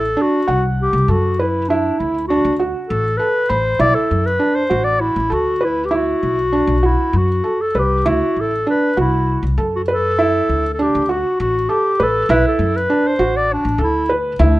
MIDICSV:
0, 0, Header, 1, 4, 480
1, 0, Start_track
1, 0, Tempo, 604230
1, 1343, Time_signature, 7, 3, 24, 8
1, 4215, Tempo, 610376
1, 8055, Tempo, 601805
1, 11571, End_track
2, 0, Start_track
2, 0, Title_t, "Clarinet"
2, 0, Program_c, 0, 71
2, 0, Note_on_c, 0, 69, 84
2, 175, Note_on_c, 0, 66, 81
2, 187, Note_off_c, 0, 69, 0
2, 513, Note_off_c, 0, 66, 0
2, 649, Note_on_c, 0, 67, 81
2, 880, Note_on_c, 0, 66, 74
2, 892, Note_off_c, 0, 67, 0
2, 1110, Note_on_c, 0, 64, 72
2, 1122, Note_off_c, 0, 66, 0
2, 1339, Note_on_c, 0, 62, 78
2, 1351, Note_off_c, 0, 64, 0
2, 1581, Note_on_c, 0, 64, 71
2, 1593, Note_off_c, 0, 62, 0
2, 1802, Note_off_c, 0, 64, 0
2, 1807, Note_on_c, 0, 66, 85
2, 2062, Note_off_c, 0, 66, 0
2, 2290, Note_on_c, 0, 69, 79
2, 2522, Note_on_c, 0, 71, 89
2, 2534, Note_off_c, 0, 69, 0
2, 2778, Note_on_c, 0, 72, 87
2, 2790, Note_off_c, 0, 71, 0
2, 3023, Note_on_c, 0, 74, 96
2, 3035, Note_off_c, 0, 72, 0
2, 3135, Note_on_c, 0, 69, 82
2, 3147, Note_off_c, 0, 74, 0
2, 3387, Note_on_c, 0, 71, 85
2, 3399, Note_off_c, 0, 69, 0
2, 3618, Note_on_c, 0, 72, 79
2, 3630, Note_off_c, 0, 71, 0
2, 3846, Note_on_c, 0, 74, 81
2, 3858, Note_off_c, 0, 72, 0
2, 3977, Note_on_c, 0, 64, 90
2, 3989, Note_off_c, 0, 74, 0
2, 4232, Note_on_c, 0, 66, 78
2, 4244, Note_off_c, 0, 64, 0
2, 4481, Note_on_c, 0, 64, 77
2, 4493, Note_off_c, 0, 66, 0
2, 4646, Note_on_c, 0, 67, 58
2, 4658, Note_off_c, 0, 64, 0
2, 4727, Note_on_c, 0, 66, 82
2, 4739, Note_off_c, 0, 67, 0
2, 5429, Note_on_c, 0, 64, 72
2, 5441, Note_off_c, 0, 66, 0
2, 5681, Note_on_c, 0, 66, 79
2, 5693, Note_off_c, 0, 64, 0
2, 6032, Note_on_c, 0, 69, 77
2, 6044, Note_off_c, 0, 66, 0
2, 6165, Note_on_c, 0, 67, 71
2, 6176, Note_off_c, 0, 69, 0
2, 6400, Note_on_c, 0, 66, 77
2, 6412, Note_off_c, 0, 67, 0
2, 6652, Note_on_c, 0, 69, 81
2, 6664, Note_off_c, 0, 66, 0
2, 6876, Note_off_c, 0, 69, 0
2, 6882, Note_on_c, 0, 71, 78
2, 7095, Note_off_c, 0, 71, 0
2, 7119, Note_on_c, 0, 64, 73
2, 7468, Note_off_c, 0, 64, 0
2, 7715, Note_on_c, 0, 66, 70
2, 7765, Note_off_c, 0, 66, 0
2, 7834, Note_on_c, 0, 69, 87
2, 8459, Note_off_c, 0, 69, 0
2, 8490, Note_on_c, 0, 69, 60
2, 8556, Note_on_c, 0, 67, 81
2, 8568, Note_off_c, 0, 69, 0
2, 8788, Note_on_c, 0, 66, 75
2, 8799, Note_off_c, 0, 67, 0
2, 9019, Note_off_c, 0, 66, 0
2, 9024, Note_on_c, 0, 66, 81
2, 9259, Note_on_c, 0, 67, 77
2, 9271, Note_off_c, 0, 66, 0
2, 9521, Note_on_c, 0, 69, 79
2, 9533, Note_off_c, 0, 67, 0
2, 9745, Note_on_c, 0, 71, 87
2, 9757, Note_off_c, 0, 69, 0
2, 9861, Note_off_c, 0, 71, 0
2, 9878, Note_on_c, 0, 69, 75
2, 10109, Note_on_c, 0, 71, 89
2, 10121, Note_off_c, 0, 69, 0
2, 10355, Note_on_c, 0, 72, 79
2, 10367, Note_off_c, 0, 71, 0
2, 10590, Note_on_c, 0, 74, 78
2, 10602, Note_off_c, 0, 72, 0
2, 10721, Note_on_c, 0, 62, 80
2, 10733, Note_off_c, 0, 74, 0
2, 10948, Note_off_c, 0, 62, 0
2, 10957, Note_on_c, 0, 64, 73
2, 11194, Note_off_c, 0, 64, 0
2, 11441, Note_on_c, 0, 62, 74
2, 11571, Note_off_c, 0, 62, 0
2, 11571, End_track
3, 0, Start_track
3, 0, Title_t, "Felt piano"
3, 0, Program_c, 1, 0
3, 133, Note_on_c, 1, 62, 77
3, 310, Note_off_c, 1, 62, 0
3, 378, Note_on_c, 1, 78, 63
3, 730, Note_off_c, 1, 78, 0
3, 862, Note_on_c, 1, 69, 58
3, 1037, Note_off_c, 1, 69, 0
3, 1108, Note_on_c, 1, 71, 60
3, 1281, Note_off_c, 1, 71, 0
3, 1352, Note_on_c, 1, 64, 79
3, 1699, Note_off_c, 1, 64, 0
3, 1829, Note_on_c, 1, 62, 80
3, 2002, Note_off_c, 1, 62, 0
3, 2061, Note_on_c, 1, 66, 65
3, 2409, Note_off_c, 1, 66, 0
3, 2537, Note_on_c, 1, 69, 61
3, 2712, Note_off_c, 1, 69, 0
3, 2776, Note_on_c, 1, 83, 58
3, 2950, Note_off_c, 1, 83, 0
3, 3013, Note_on_c, 1, 64, 73
3, 3362, Note_off_c, 1, 64, 0
3, 3491, Note_on_c, 1, 62, 74
3, 3666, Note_off_c, 1, 62, 0
3, 3732, Note_on_c, 1, 66, 69
3, 4082, Note_off_c, 1, 66, 0
3, 4209, Note_on_c, 1, 69, 68
3, 4385, Note_off_c, 1, 69, 0
3, 4451, Note_on_c, 1, 71, 62
3, 4626, Note_off_c, 1, 71, 0
3, 4689, Note_on_c, 1, 64, 77
3, 5038, Note_off_c, 1, 64, 0
3, 5173, Note_on_c, 1, 62, 75
3, 5346, Note_off_c, 1, 62, 0
3, 5413, Note_on_c, 1, 66, 65
3, 5761, Note_off_c, 1, 66, 0
3, 5891, Note_on_c, 1, 69, 58
3, 6067, Note_off_c, 1, 69, 0
3, 6139, Note_on_c, 1, 71, 55
3, 6313, Note_off_c, 1, 71, 0
3, 6377, Note_on_c, 1, 64, 73
3, 6728, Note_off_c, 1, 64, 0
3, 6858, Note_on_c, 1, 62, 75
3, 7033, Note_off_c, 1, 62, 0
3, 7097, Note_on_c, 1, 66, 66
3, 7447, Note_off_c, 1, 66, 0
3, 7574, Note_on_c, 1, 69, 59
3, 7749, Note_off_c, 1, 69, 0
3, 7813, Note_on_c, 1, 71, 63
3, 7988, Note_off_c, 1, 71, 0
3, 8052, Note_on_c, 1, 64, 85
3, 8405, Note_off_c, 1, 64, 0
3, 8535, Note_on_c, 1, 62, 78
3, 8711, Note_off_c, 1, 62, 0
3, 8774, Note_on_c, 1, 66, 64
3, 9125, Note_off_c, 1, 66, 0
3, 9253, Note_on_c, 1, 69, 68
3, 9430, Note_off_c, 1, 69, 0
3, 9497, Note_on_c, 1, 71, 67
3, 9672, Note_off_c, 1, 71, 0
3, 9738, Note_on_c, 1, 64, 87
3, 10086, Note_off_c, 1, 64, 0
3, 10215, Note_on_c, 1, 62, 82
3, 10390, Note_off_c, 1, 62, 0
3, 10451, Note_on_c, 1, 66, 68
3, 10802, Note_off_c, 1, 66, 0
3, 10926, Note_on_c, 1, 69, 66
3, 11104, Note_off_c, 1, 69, 0
3, 11170, Note_on_c, 1, 71, 63
3, 11347, Note_off_c, 1, 71, 0
3, 11410, Note_on_c, 1, 64, 86
3, 11571, Note_off_c, 1, 64, 0
3, 11571, End_track
4, 0, Start_track
4, 0, Title_t, "Upright bass"
4, 0, Program_c, 2, 32
4, 0, Note_on_c, 2, 33, 64
4, 117, Note_off_c, 2, 33, 0
4, 382, Note_on_c, 2, 36, 69
4, 702, Note_off_c, 2, 36, 0
4, 739, Note_on_c, 2, 36, 76
4, 846, Note_off_c, 2, 36, 0
4, 858, Note_on_c, 2, 42, 75
4, 1501, Note_off_c, 2, 42, 0
4, 1589, Note_on_c, 2, 38, 68
4, 1906, Note_off_c, 2, 38, 0
4, 1942, Note_on_c, 2, 38, 73
4, 2155, Note_off_c, 2, 38, 0
4, 2306, Note_on_c, 2, 33, 82
4, 2515, Note_off_c, 2, 33, 0
4, 2780, Note_on_c, 2, 33, 79
4, 2990, Note_off_c, 2, 33, 0
4, 3015, Note_on_c, 2, 35, 86
4, 3121, Note_off_c, 2, 35, 0
4, 3264, Note_on_c, 2, 42, 73
4, 3471, Note_off_c, 2, 42, 0
4, 3738, Note_on_c, 2, 33, 75
4, 4055, Note_off_c, 2, 33, 0
4, 4099, Note_on_c, 2, 33, 75
4, 4203, Note_off_c, 2, 33, 0
4, 4223, Note_on_c, 2, 38, 66
4, 4855, Note_off_c, 2, 38, 0
4, 4939, Note_on_c, 2, 35, 68
4, 5253, Note_off_c, 2, 35, 0
4, 5290, Note_on_c, 2, 35, 77
4, 5502, Note_off_c, 2, 35, 0
4, 5651, Note_on_c, 2, 42, 77
4, 5863, Note_off_c, 2, 42, 0
4, 6134, Note_on_c, 2, 36, 71
4, 6348, Note_off_c, 2, 36, 0
4, 6378, Note_on_c, 2, 38, 85
4, 6484, Note_off_c, 2, 38, 0
4, 6619, Note_on_c, 2, 33, 60
4, 6832, Note_off_c, 2, 33, 0
4, 7098, Note_on_c, 2, 36, 74
4, 7417, Note_off_c, 2, 36, 0
4, 7455, Note_on_c, 2, 36, 74
4, 7562, Note_off_c, 2, 36, 0
4, 7573, Note_on_c, 2, 42, 74
4, 8211, Note_off_c, 2, 42, 0
4, 8296, Note_on_c, 2, 38, 71
4, 8617, Note_off_c, 2, 38, 0
4, 8660, Note_on_c, 2, 38, 75
4, 8872, Note_off_c, 2, 38, 0
4, 9019, Note_on_c, 2, 33, 81
4, 9232, Note_off_c, 2, 33, 0
4, 9497, Note_on_c, 2, 33, 74
4, 9710, Note_off_c, 2, 33, 0
4, 9731, Note_on_c, 2, 35, 88
4, 9841, Note_off_c, 2, 35, 0
4, 9969, Note_on_c, 2, 42, 72
4, 10184, Note_off_c, 2, 42, 0
4, 10449, Note_on_c, 2, 33, 76
4, 10770, Note_off_c, 2, 33, 0
4, 10813, Note_on_c, 2, 33, 76
4, 10916, Note_off_c, 2, 33, 0
4, 10921, Note_on_c, 2, 38, 76
4, 11353, Note_off_c, 2, 38, 0
4, 11408, Note_on_c, 2, 38, 93
4, 11571, Note_off_c, 2, 38, 0
4, 11571, End_track
0, 0, End_of_file